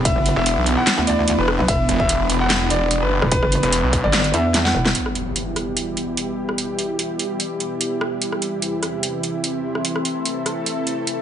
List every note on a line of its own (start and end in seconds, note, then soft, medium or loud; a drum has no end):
0.00 0.14 E1 loud
0.00 4.91 E3 medium
0.00 4.91 B3 medium
0.00 8.21 B3 medium
0.00 4.93 D4 medium
0.00 6.26 E4 medium
0.00 8.21 B5 medium
0.05 0.32 E5 loud
0.05 kick loud
0.05 closed hi-hat medium
0.16 0.35 F#1 loud
0.26 closed hi-hat medium
0.36 0.55 E1 medium
0.36 0.72 E5 loud
0.46 closed hi-hat medium
0.57 0.76 B1 loud
0.66 closed hi-hat medium
0.77 1.03 F#5 medium
0.87 snare loud
0.87 clap medium
0.87 closed hi-hat medium
0.98 1.37 D2 loud
1.07 1.34 D5 medium
1.07 closed hi-hat medium
1.28 closed hi-hat medium
1.38 1.57 E1 medium
1.38 1.65 B4 loud
1.48 cross-stick medium
1.59 1.67 B1 loud
1.68 1.87 E1 loud
1.68 1.95 E5 loud
1.68 kick loud
1.68 closed hi-hat medium
1.89 2.49 E1 loud
1.89 closed hi-hat medium
2.00 2.35 E5 loud
2.00 kick medium
2.09 closed hi-hat medium
2.30 closed hi-hat medium
2.41 2.67 F#5 medium
2.50 2.69 E1 loud
2.50 snare loud
2.50 clap medium
2.50 closed hi-hat medium
2.70 3.00 E1 loud
2.70 2.97 D5 medium
2.70 closed hi-hat medium
2.91 closed hi-hat medium
3.02 3.20 F#1 medium
3.02 3.28 B4 loud
3.22 3.41 E1 loud
3.22 cross-stick medium
3.32 3.59 B4 loud
3.32 kick loud
3.32 closed hi-hat medium
3.43 3.61 F#1 loud
3.43 cross-stick medium
3.52 closed hi-hat medium
3.63 3.82 E1 loud
3.63 3.98 B4 medium
3.63 closed hi-hat soft
3.72 closed hi-hat medium
3.83 4.02 B1 loud
3.93 kick medium
3.93 closed hi-hat medium
4.04 4.32 G1 medium
4.04 4.30 D5 medium
4.13 snare loud
4.13 clap loud
4.13 closed hi-hat medium
4.24 closed hi-hat soft
4.34 4.73 E2 loud
4.34 4.61 E5 loud
4.34 closed hi-hat medium
4.54 snare medium
4.54 closed hi-hat medium
4.65 4.91 F#5 medium
4.65 snare medium
4.75 4.93 E1 loud
4.85 snare medium
4.95 8.18 B2 medium
4.95 11.22 E3 medium
4.95 9.81 G3 medium
4.95 11.22 E4 medium
4.95 9.81 G4 medium
4.95 closed hi-hat medium
4.95 impact medium
5.06 cross-stick medium
5.15 closed hi-hat soft
5.36 closed hi-hat medium
5.51 10.50 G4 medium
5.56 cross-stick medium
5.56 closed hi-hat soft
5.69 11.22 E5 medium
5.77 closed hi-hat medium
5.97 closed hi-hat soft
6.17 closed hi-hat medium
6.49 cross-stick medium
6.58 closed hi-hat medium
6.79 closed hi-hat soft
6.99 closed hi-hat medium
7.19 closed hi-hat soft
7.40 closed hi-hat medium
7.60 closed hi-hat soft
7.81 closed hi-hat medium
8.01 cross-stick medium
8.22 9.83 E2 medium
8.22 11.22 C3 medium
8.22 9.85 E3 medium
8.22 closed hi-hat medium
8.32 cross-stick medium
8.42 closed hi-hat soft
8.54 11.22 C4 medium
8.62 closed hi-hat medium
8.83 cross-stick medium
8.83 closed hi-hat soft
8.96 11.22 C6 medium
9.03 closed hi-hat medium
9.23 closed hi-hat soft
9.44 closed hi-hat medium
9.75 cross-stick medium
9.85 11.22 A3 medium
9.85 11.22 A4 medium
9.85 closed hi-hat medium
9.96 cross-stick medium
10.05 closed hi-hat soft
10.25 closed hi-hat medium
10.35 11.22 A4 medium
10.46 cross-stick medium
10.46 closed hi-hat soft
10.66 closed hi-hat medium
10.87 closed hi-hat soft
11.07 closed hi-hat medium